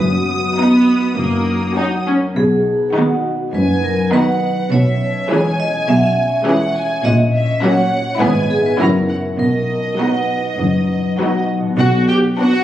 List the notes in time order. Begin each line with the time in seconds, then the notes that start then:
Already playing: B3 B4 D#6
0.00 F#1 F#2 F#4
0.18 B3
0.37 B4
0.57 B3 D#4 D#5
0.77 B4
0.97 D#4
1.17 F#1 F#2 A#3
1.36 C#4
1.56 A#4
1.76 C#4 D#4 F#4 F#5
1.96 C#5
2.07 C#4
2.16 A#4
2.35 B1 B2 G#4
2.56 D#4
2.75 B4
2.89 G#4
2.95 D#3 B3 D#4 F#4 F#5
3.15 D#5
3.34 B4
3.53 F#1 F#2 F#3 B4 G#5
3.74 D#4
3.84 A#4
3.93 B4
4.12 D#3 B3 D#4 F#4 B4 F#5
4.32 D#5
4.52 B4
4.71 B1 B2 C#5 E5
4.91 C#4
5.11 C#5
5.30 E3 G#3 C#4 G#4 G#5
5.50 C#5
5.60 D#5
5.70 G#4
5.88 B1 B2 E5
5.96 F#5
6.03 E5
6.09 C#4
6.28 C#5
6.47 E3 G#3 C#4 G#4 F#5 G#5
6.67 C#5
6.76 G#5
6.86 G#4
7.04 A#1 A#2 D#5 F#5
7.24 C#4
7.34 E5
7.43 C#5
7.62 F#3 A#3 C#4 F#4 C#5 F#5
7.82 C#5
8.01 F#4
8.20 G#1 G#2 B3 E4 G#4 B4 G#5
8.40 B3
8.50 G#4
8.60 B4 E5
8.66 B4
8.79 F#1 F#2 F#3 C#4 E4 F#4 A#4 A#5
9.00 C#4
9.09 F#5
9.19 F#4 E5
9.38 B1 B2 A#4 D#5
9.59 D#4
9.79 D#5
9.99 F#3 B3 D#4 F#4 B4 F#5
10.19 D#5
10.39 F#4
10.59 F#1 F#2 F#3
10.79 D#4
10.99 D#5
11.19 F#3 B3 D#4 F#4 F#5
11.39 D#5
11.59 B2 F#4
11.66 B3
11.70 F#4
11.75 D5
11.79 B1 B2 F#4 F#5
12.08 G4 G5
12.37 B3 D4 F#4 F#5